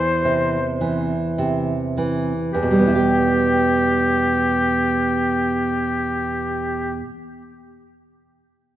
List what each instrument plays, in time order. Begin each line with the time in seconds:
Already playing: nylon-string guitar E2 E3, oboe C5
0.25 nylon-string guitar C3
0.81 nylon-string guitar E3
1.38 nylon-string guitar C3
1.97 nylon-string guitar E3
2.53 nylon-string guitar E2, oboe G4
2.63 nylon-string guitar B2
2.71 nylon-string guitar G3
2.79 nylon-string guitar B3
2.87 nylon-string guitar E4
2.95 nylon-string guitar G4